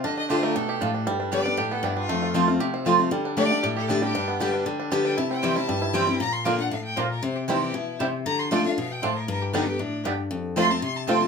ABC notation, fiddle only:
X:1
M:4/4
L:1/8
Q:1/4=234
K:C
V:1 name="Fiddle"
_e e c _B A4 | z2 d2 G A E F- | F3 z4 z | z2 d2 G A E G- |
G3 z4 g | a g2 a3 g2 | _b c' g ^f =f g c _B | c G _E G =E2 z2 |
_b c' g f f g c _B | _B G _E G D2 z2 | z2 c' a c' a g a |]